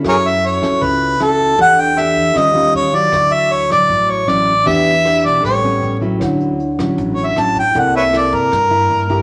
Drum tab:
HH |x-xxx-xx|xxx-x-xx|x-x--xxx|xxx-xxxx|
SD |r--r--r-|--r-r---|r--r--r-|--r-r---|
BD |o--oo--o|o--oo--o|o--oo--o|o--oo--o|

HH |xxxxxxxx|xxxxxxxx|
SD |r--r--r-|--r-r---|
BD |o--oo--o|o--oo--o|